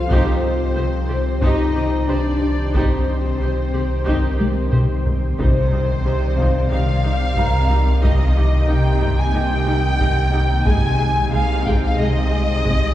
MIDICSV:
0, 0, Header, 1, 11, 480
1, 0, Start_track
1, 0, Key_signature, -3, "minor"
1, 0, Tempo, 659341
1, 79, Time_signature, 4, 2, 24, 8
1, 9421, End_track
2, 0, Start_track
2, 0, Title_t, "Violin section"
2, 0, Program_c, 0, 48
2, 0, Note_on_c, 0, 77, 76
2, 71, Note_on_c, 0, 72, 66
2, 76, Note_off_c, 0, 77, 0
2, 1029, Note_on_c, 0, 75, 60
2, 1035, Note_off_c, 0, 72, 0
2, 1513, Note_on_c, 0, 74, 62
2, 1514, Note_off_c, 0, 75, 0
2, 1987, Note_off_c, 0, 74, 0
2, 1997, Note_on_c, 0, 72, 54
2, 3438, Note_off_c, 0, 72, 0
2, 3915, Note_on_c, 0, 72, 70
2, 4848, Note_off_c, 0, 72, 0
2, 4878, Note_on_c, 0, 77, 80
2, 5839, Note_off_c, 0, 77, 0
2, 5850, Note_on_c, 0, 75, 64
2, 6315, Note_off_c, 0, 75, 0
2, 6326, Note_on_c, 0, 79, 75
2, 6682, Note_off_c, 0, 79, 0
2, 6688, Note_on_c, 0, 80, 66
2, 6803, Note_off_c, 0, 80, 0
2, 6811, Note_on_c, 0, 79, 78
2, 7760, Note_on_c, 0, 80, 86
2, 7765, Note_off_c, 0, 79, 0
2, 8230, Note_off_c, 0, 80, 0
2, 8246, Note_on_c, 0, 77, 81
2, 8478, Note_off_c, 0, 77, 0
2, 8494, Note_on_c, 0, 79, 69
2, 8605, Note_on_c, 0, 77, 76
2, 8607, Note_off_c, 0, 79, 0
2, 8718, Note_on_c, 0, 75, 86
2, 8720, Note_off_c, 0, 77, 0
2, 9421, Note_off_c, 0, 75, 0
2, 9421, End_track
3, 0, Start_track
3, 0, Title_t, "Violin section"
3, 0, Program_c, 1, 48
3, 83, Note_on_c, 1, 72, 61
3, 304, Note_off_c, 1, 72, 0
3, 556, Note_on_c, 1, 75, 39
3, 614, Note_off_c, 1, 75, 0
3, 790, Note_on_c, 1, 74, 43
3, 848, Note_off_c, 1, 74, 0
3, 1036, Note_on_c, 1, 72, 62
3, 1261, Note_off_c, 1, 72, 0
3, 1275, Note_on_c, 1, 74, 41
3, 1333, Note_off_c, 1, 74, 0
3, 1517, Note_on_c, 1, 75, 46
3, 1575, Note_off_c, 1, 75, 0
3, 1989, Note_on_c, 1, 72, 56
3, 2217, Note_off_c, 1, 72, 0
3, 2479, Note_on_c, 1, 75, 40
3, 2538, Note_off_c, 1, 75, 0
3, 2716, Note_on_c, 1, 74, 42
3, 2774, Note_off_c, 1, 74, 0
3, 2957, Note_on_c, 1, 72, 48
3, 3181, Note_off_c, 1, 72, 0
3, 3190, Note_on_c, 1, 74, 41
3, 3248, Note_off_c, 1, 74, 0
3, 3432, Note_on_c, 1, 75, 42
3, 3491, Note_off_c, 1, 75, 0
3, 3911, Note_on_c, 1, 72, 80
3, 4846, Note_off_c, 1, 72, 0
3, 4880, Note_on_c, 1, 77, 99
3, 5839, Note_off_c, 1, 77, 0
3, 5851, Note_on_c, 1, 75, 74
3, 6323, Note_on_c, 1, 79, 85
3, 6325, Note_off_c, 1, 75, 0
3, 6681, Note_off_c, 1, 79, 0
3, 6695, Note_on_c, 1, 80, 86
3, 6796, Note_on_c, 1, 79, 111
3, 6805, Note_off_c, 1, 80, 0
3, 7757, Note_off_c, 1, 79, 0
3, 7772, Note_on_c, 1, 80, 95
3, 8237, Note_on_c, 1, 77, 94
3, 8246, Note_off_c, 1, 80, 0
3, 8473, Note_off_c, 1, 77, 0
3, 8491, Note_on_c, 1, 79, 80
3, 8605, Note_off_c, 1, 79, 0
3, 8622, Note_on_c, 1, 77, 82
3, 8729, Note_off_c, 1, 77, 0
3, 8737, Note_on_c, 1, 75, 106
3, 9421, Note_off_c, 1, 75, 0
3, 9421, End_track
4, 0, Start_track
4, 0, Title_t, "Grand piano"
4, 0, Program_c, 2, 0
4, 0, Control_c, 2, 64, 127
4, 0, Note_on_c, 2, 72, 50
4, 94, Control_c, 2, 64, 0
4, 209, Control_c, 2, 64, 127
4, 1005, Note_off_c, 2, 72, 0
4, 2958, Note_on_c, 2, 70, 36
4, 3890, Note_off_c, 2, 70, 0
4, 3933, Control_c, 2, 64, 0
4, 4064, Control_c, 2, 64, 127
4, 4643, Note_on_c, 2, 77, 46
4, 5378, Note_on_c, 2, 82, 50
4, 5385, Note_on_c, 2, 70, 42
4, 5853, Control_c, 2, 64, 0
4, 5956, Control_c, 2, 64, 127
4, 6052, Note_off_c, 2, 77, 0
4, 6095, Note_on_c, 2, 86, 52
4, 6780, Note_off_c, 2, 82, 0
4, 6783, Note_off_c, 2, 70, 0
4, 7498, Note_off_c, 2, 86, 0
4, 7774, Control_c, 2, 64, 0
4, 7879, Control_c, 2, 64, 127
4, 9421, End_track
5, 0, Start_track
5, 0, Title_t, "Ambient pad"
5, 0, Program_c, 3, 92
5, 0, Note_on_c, 3, 53, 62
5, 0, Note_on_c, 3, 69, 56
5, 71, Note_on_c, 3, 51, 58
5, 71, Note_on_c, 3, 60, 57
5, 72, Note_on_c, 3, 67, 55
5, 74, Note_on_c, 3, 72, 58
5, 77, Note_off_c, 3, 53, 0
5, 79, Note_off_c, 3, 69, 0
5, 3886, Note_off_c, 3, 60, 0
5, 3903, Note_off_c, 3, 51, 0
5, 3903, Note_off_c, 3, 67, 0
5, 3909, Note_on_c, 3, 60, 67
5, 3912, Note_on_c, 3, 51, 62
5, 3912, Note_on_c, 3, 67, 61
5, 3915, Note_on_c, 3, 74, 65
5, 3917, Note_off_c, 3, 72, 0
5, 5805, Note_off_c, 3, 60, 0
5, 5808, Note_off_c, 3, 74, 0
5, 5843, Note_on_c, 3, 58, 65
5, 5848, Note_on_c, 3, 75, 62
5, 7726, Note_off_c, 3, 51, 0
5, 7726, Note_off_c, 3, 67, 0
5, 7761, Note_off_c, 3, 58, 0
5, 7764, Note_off_c, 3, 75, 0
5, 7766, Note_on_c, 3, 72, 64
5, 7771, Note_on_c, 3, 68, 65
5, 7772, Note_on_c, 3, 51, 63
5, 7773, Note_on_c, 3, 60, 60
5, 9421, Note_off_c, 3, 51, 0
5, 9421, Note_off_c, 3, 60, 0
5, 9421, Note_off_c, 3, 68, 0
5, 9421, Note_off_c, 3, 72, 0
5, 9421, End_track
6, 0, Start_track
6, 0, Title_t, "Viola section"
6, 0, Program_c, 4, 48
6, 73, Note_on_c, 4, 63, 66
6, 77, Note_on_c, 4, 67, 73
6, 299, Note_off_c, 4, 63, 0
6, 301, Note_off_c, 4, 67, 0
6, 549, Note_on_c, 4, 72, 46
6, 553, Note_on_c, 4, 67, 45
6, 607, Note_off_c, 4, 72, 0
6, 611, Note_off_c, 4, 67, 0
6, 793, Note_on_c, 4, 67, 45
6, 852, Note_off_c, 4, 67, 0
6, 1032, Note_on_c, 4, 63, 67
6, 1033, Note_on_c, 4, 67, 59
6, 1259, Note_off_c, 4, 63, 0
6, 1259, Note_off_c, 4, 67, 0
6, 1274, Note_on_c, 4, 67, 42
6, 1333, Note_off_c, 4, 67, 0
6, 1514, Note_on_c, 4, 67, 44
6, 1514, Note_on_c, 4, 72, 51
6, 1572, Note_off_c, 4, 67, 0
6, 1573, Note_off_c, 4, 72, 0
6, 1988, Note_on_c, 4, 63, 52
6, 1990, Note_on_c, 4, 67, 64
6, 2217, Note_off_c, 4, 63, 0
6, 2217, Note_off_c, 4, 67, 0
6, 2480, Note_on_c, 4, 72, 45
6, 2482, Note_on_c, 4, 67, 35
6, 2539, Note_off_c, 4, 72, 0
6, 2541, Note_off_c, 4, 67, 0
6, 2719, Note_on_c, 4, 67, 41
6, 2722, Note_off_c, 4, 67, 0
6, 2722, Note_on_c, 4, 67, 41
6, 2780, Note_off_c, 4, 67, 0
6, 2951, Note_on_c, 4, 63, 60
6, 2952, Note_on_c, 4, 67, 62
6, 3178, Note_off_c, 4, 63, 0
6, 3179, Note_off_c, 4, 67, 0
6, 3193, Note_on_c, 4, 67, 36
6, 3252, Note_off_c, 4, 67, 0
6, 3434, Note_on_c, 4, 72, 39
6, 3436, Note_on_c, 4, 67, 41
6, 3493, Note_off_c, 4, 72, 0
6, 3495, Note_off_c, 4, 67, 0
6, 3923, Note_on_c, 4, 55, 55
6, 3927, Note_on_c, 4, 63, 57
6, 3981, Note_off_c, 4, 55, 0
6, 3985, Note_off_c, 4, 63, 0
6, 4164, Note_on_c, 4, 63, 47
6, 4166, Note_on_c, 4, 55, 50
6, 4222, Note_off_c, 4, 63, 0
6, 4224, Note_off_c, 4, 55, 0
6, 4404, Note_on_c, 4, 63, 52
6, 4407, Note_on_c, 4, 55, 55
6, 4462, Note_off_c, 4, 63, 0
6, 4466, Note_off_c, 4, 55, 0
6, 4648, Note_on_c, 4, 55, 49
6, 4651, Note_on_c, 4, 63, 50
6, 4706, Note_off_c, 4, 55, 0
6, 4709, Note_off_c, 4, 63, 0
6, 4883, Note_on_c, 4, 63, 53
6, 4884, Note_on_c, 4, 55, 55
6, 4941, Note_off_c, 4, 63, 0
6, 4942, Note_off_c, 4, 55, 0
6, 5125, Note_on_c, 4, 63, 45
6, 5128, Note_on_c, 4, 55, 48
6, 5183, Note_off_c, 4, 63, 0
6, 5186, Note_off_c, 4, 55, 0
6, 5362, Note_on_c, 4, 55, 48
6, 5362, Note_on_c, 4, 63, 49
6, 5420, Note_off_c, 4, 55, 0
6, 5421, Note_off_c, 4, 63, 0
6, 5601, Note_on_c, 4, 63, 50
6, 5602, Note_on_c, 4, 55, 52
6, 5659, Note_off_c, 4, 63, 0
6, 5660, Note_off_c, 4, 55, 0
6, 5836, Note_on_c, 4, 63, 58
6, 5837, Note_on_c, 4, 55, 57
6, 5894, Note_off_c, 4, 63, 0
6, 5895, Note_off_c, 4, 55, 0
6, 6084, Note_on_c, 4, 55, 47
6, 6085, Note_on_c, 4, 63, 52
6, 6142, Note_off_c, 4, 55, 0
6, 6143, Note_off_c, 4, 63, 0
6, 6312, Note_on_c, 4, 55, 56
6, 6314, Note_on_c, 4, 63, 52
6, 6370, Note_off_c, 4, 55, 0
6, 6373, Note_off_c, 4, 63, 0
6, 6553, Note_on_c, 4, 63, 51
6, 6556, Note_on_c, 4, 55, 54
6, 6611, Note_off_c, 4, 63, 0
6, 6614, Note_off_c, 4, 55, 0
6, 6794, Note_on_c, 4, 63, 55
6, 6796, Note_on_c, 4, 55, 62
6, 6852, Note_off_c, 4, 63, 0
6, 6854, Note_off_c, 4, 55, 0
6, 7034, Note_on_c, 4, 63, 56
6, 7035, Note_on_c, 4, 55, 54
6, 7092, Note_off_c, 4, 63, 0
6, 7093, Note_off_c, 4, 55, 0
6, 7275, Note_on_c, 4, 55, 57
6, 7275, Note_on_c, 4, 63, 53
6, 7333, Note_off_c, 4, 55, 0
6, 7334, Note_off_c, 4, 63, 0
6, 7513, Note_on_c, 4, 55, 59
6, 7515, Note_on_c, 4, 63, 53
6, 7571, Note_off_c, 4, 55, 0
6, 7573, Note_off_c, 4, 63, 0
6, 7752, Note_on_c, 4, 56, 64
6, 7753, Note_on_c, 4, 68, 66
6, 7810, Note_off_c, 4, 56, 0
6, 7812, Note_off_c, 4, 68, 0
6, 7997, Note_on_c, 4, 68, 57
6, 8000, Note_on_c, 4, 56, 54
6, 8056, Note_off_c, 4, 68, 0
6, 8058, Note_off_c, 4, 56, 0
6, 8238, Note_on_c, 4, 56, 59
6, 8238, Note_on_c, 4, 68, 59
6, 8296, Note_off_c, 4, 56, 0
6, 8296, Note_off_c, 4, 68, 0
6, 8482, Note_on_c, 4, 56, 59
6, 8483, Note_on_c, 4, 68, 61
6, 8540, Note_off_c, 4, 56, 0
6, 8541, Note_off_c, 4, 68, 0
6, 8722, Note_on_c, 4, 56, 65
6, 8724, Note_on_c, 4, 68, 59
6, 8781, Note_off_c, 4, 56, 0
6, 8782, Note_off_c, 4, 68, 0
6, 8952, Note_on_c, 4, 56, 55
6, 8952, Note_on_c, 4, 68, 54
6, 9010, Note_off_c, 4, 56, 0
6, 9010, Note_off_c, 4, 68, 0
6, 9192, Note_on_c, 4, 56, 53
6, 9193, Note_on_c, 4, 68, 56
6, 9250, Note_off_c, 4, 56, 0
6, 9252, Note_off_c, 4, 68, 0
6, 9421, End_track
7, 0, Start_track
7, 0, Title_t, "French horn section"
7, 0, Program_c, 5, 60
7, 57, Note_on_c, 5, 60, 78
7, 1009, Note_off_c, 5, 60, 0
7, 1033, Note_on_c, 5, 63, 80
7, 1505, Note_on_c, 5, 62, 76
7, 1516, Note_off_c, 5, 63, 0
7, 1863, Note_off_c, 5, 62, 0
7, 1987, Note_on_c, 5, 60, 65
7, 3404, Note_off_c, 5, 60, 0
7, 3911, Note_on_c, 5, 74, 64
7, 3914, Note_on_c, 5, 51, 69
7, 5806, Note_off_c, 5, 74, 0
7, 5847, Note_on_c, 5, 63, 71
7, 7728, Note_off_c, 5, 51, 0
7, 7775, Note_on_c, 5, 56, 71
7, 9421, Note_off_c, 5, 56, 0
7, 9421, Note_off_c, 5, 63, 0
7, 9421, End_track
8, 0, Start_track
8, 0, Title_t, "Cello section"
8, 0, Program_c, 6, 48
8, 73, Note_on_c, 6, 48, 69
8, 131, Note_off_c, 6, 48, 0
8, 554, Note_on_c, 6, 48, 54
8, 612, Note_off_c, 6, 48, 0
8, 793, Note_on_c, 6, 48, 51
8, 851, Note_off_c, 6, 48, 0
8, 1028, Note_on_c, 6, 48, 67
8, 1087, Note_off_c, 6, 48, 0
8, 1268, Note_on_c, 6, 48, 42
8, 1326, Note_off_c, 6, 48, 0
8, 1516, Note_on_c, 6, 48, 44
8, 1574, Note_off_c, 6, 48, 0
8, 1997, Note_on_c, 6, 48, 59
8, 2055, Note_off_c, 6, 48, 0
8, 2485, Note_on_c, 6, 48, 43
8, 2543, Note_off_c, 6, 48, 0
8, 2720, Note_on_c, 6, 48, 43
8, 2778, Note_off_c, 6, 48, 0
8, 2962, Note_on_c, 6, 48, 58
8, 3021, Note_off_c, 6, 48, 0
8, 3197, Note_on_c, 6, 48, 39
8, 3255, Note_off_c, 6, 48, 0
8, 3440, Note_on_c, 6, 48, 38
8, 3498, Note_off_c, 6, 48, 0
8, 3921, Note_on_c, 6, 48, 65
8, 4343, Note_off_c, 6, 48, 0
8, 4407, Note_on_c, 6, 48, 73
8, 4827, Note_off_c, 6, 48, 0
8, 4882, Note_on_c, 6, 48, 64
8, 5304, Note_off_c, 6, 48, 0
8, 5369, Note_on_c, 6, 48, 61
8, 5788, Note_off_c, 6, 48, 0
8, 5841, Note_on_c, 6, 48, 66
8, 6264, Note_off_c, 6, 48, 0
8, 6323, Note_on_c, 6, 48, 72
8, 6744, Note_off_c, 6, 48, 0
8, 6805, Note_on_c, 6, 48, 71
8, 7226, Note_off_c, 6, 48, 0
8, 7286, Note_on_c, 6, 48, 67
8, 7706, Note_off_c, 6, 48, 0
8, 7766, Note_on_c, 6, 48, 70
8, 8186, Note_off_c, 6, 48, 0
8, 8241, Note_on_c, 6, 48, 76
8, 8664, Note_off_c, 6, 48, 0
8, 8723, Note_on_c, 6, 48, 73
8, 9145, Note_off_c, 6, 48, 0
8, 9205, Note_on_c, 6, 48, 63
8, 9421, Note_off_c, 6, 48, 0
8, 9421, End_track
9, 0, Start_track
9, 0, Title_t, "Double bass section"
9, 0, Program_c, 7, 48
9, 3923, Note_on_c, 7, 36, 62
9, 4344, Note_off_c, 7, 36, 0
9, 4405, Note_on_c, 7, 36, 65
9, 4825, Note_off_c, 7, 36, 0
9, 4885, Note_on_c, 7, 36, 64
9, 5306, Note_off_c, 7, 36, 0
9, 5362, Note_on_c, 7, 36, 66
9, 5784, Note_off_c, 7, 36, 0
9, 5842, Note_on_c, 7, 36, 59
9, 6264, Note_off_c, 7, 36, 0
9, 6323, Note_on_c, 7, 36, 63
9, 6745, Note_off_c, 7, 36, 0
9, 6802, Note_on_c, 7, 36, 73
9, 7224, Note_off_c, 7, 36, 0
9, 7288, Note_on_c, 7, 36, 73
9, 7707, Note_off_c, 7, 36, 0
9, 7767, Note_on_c, 7, 36, 72
9, 8187, Note_off_c, 7, 36, 0
9, 8247, Note_on_c, 7, 36, 74
9, 8667, Note_off_c, 7, 36, 0
9, 8725, Note_on_c, 7, 36, 71
9, 9146, Note_off_c, 7, 36, 0
9, 9207, Note_on_c, 7, 36, 74
9, 9421, Note_off_c, 7, 36, 0
9, 9421, End_track
10, 0, Start_track
10, 0, Title_t, "Sub bass"
10, 0, Program_c, 8, 38
10, 74, Note_on_c, 8, 36, 68
10, 3888, Note_off_c, 8, 36, 0
10, 3925, Note_on_c, 8, 36, 69
10, 7733, Note_off_c, 8, 36, 0
10, 7766, Note_on_c, 8, 36, 67
10, 9421, Note_off_c, 8, 36, 0
10, 9421, End_track
11, 0, Start_track
11, 0, Title_t, "Taiko and cinematic ensemble drums"
11, 74, Note_on_c, 9, 41, 90
11, 147, Note_off_c, 9, 41, 0
11, 1030, Note_on_c, 9, 41, 83
11, 1102, Note_off_c, 9, 41, 0
11, 1995, Note_on_c, 9, 41, 91
11, 2068, Note_off_c, 9, 41, 0
11, 2960, Note_on_c, 9, 41, 81
11, 3033, Note_off_c, 9, 41, 0
11, 3204, Note_on_c, 9, 48, 71
11, 3276, Note_off_c, 9, 48, 0
11, 3439, Note_on_c, 9, 47, 79
11, 3512, Note_off_c, 9, 47, 0
11, 3682, Note_on_c, 9, 43, 89
11, 3755, Note_off_c, 9, 43, 0
11, 3924, Note_on_c, 9, 41, 101
11, 3997, Note_off_c, 9, 41, 0
11, 4644, Note_on_c, 9, 41, 78
11, 4717, Note_off_c, 9, 41, 0
11, 4888, Note_on_c, 9, 43, 62
11, 4961, Note_off_c, 9, 43, 0
11, 5364, Note_on_c, 9, 41, 84
11, 5437, Note_off_c, 9, 41, 0
11, 5847, Note_on_c, 9, 41, 96
11, 5920, Note_off_c, 9, 41, 0
11, 6564, Note_on_c, 9, 41, 74
11, 6637, Note_off_c, 9, 41, 0
11, 7284, Note_on_c, 9, 41, 77
11, 7357, Note_off_c, 9, 41, 0
11, 7764, Note_on_c, 9, 41, 101
11, 7836, Note_off_c, 9, 41, 0
11, 8486, Note_on_c, 9, 41, 83
11, 8559, Note_off_c, 9, 41, 0
11, 9207, Note_on_c, 9, 41, 77
11, 9280, Note_off_c, 9, 41, 0
11, 9421, End_track
0, 0, End_of_file